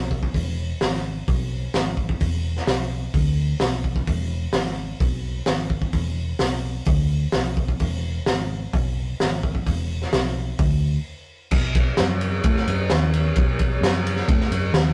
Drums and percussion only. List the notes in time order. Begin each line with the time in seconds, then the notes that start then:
0.11 kick
0.23 kick
0.34 kick, open hi-hat
0.81 snare, open hi-hat
0.94 snare
1.28 kick, open hi-hat
1.74 snare, open hi-hat
1.97 kick
2.09 kick
2.20 kick, open hi-hat
2.57 snare
2.67 snare, open hi-hat
3.14 kick, open hi-hat
3.60 snare, open hi-hat
3.84 kick
3.96 kick
4.07 kick, open hi-hat
4.53 snare, open hi-hat
4.66 snare
5.00 kick, open hi-hat
5.46 snare, open hi-hat
5.70 kick
5.82 kick
5.93 kick, open hi-hat
6.39 snare, open hi-hat
6.85 kick, open hi-hat
7.32 snare, open hi-hat
7.57 kick
7.68 kick
7.79 kick, open hi-hat
8.26 snare, open hi-hat
8.73 kick, open hi-hat
9.20 snare, open hi-hat
9.43 kick
9.55 kick
9.67 kick, open hi-hat
10.02 snare
10.13 snare, open hi-hat
10.26 snare
10.59 kick, open hi-hat
11.51 kick, crash
11.75 kick, ride
11.97 snare, ride
12.21 ride
12.44 kick, ride
12.57 snare
12.68 ride
12.90 snare, ride
13.14 ride
13.36 kick, ride
13.59 kick, ride
13.84 snare, ride
14.07 ride
14.16 snare
14.29 kick, ride
14.41 snare
14.52 ride
14.74 snare, ride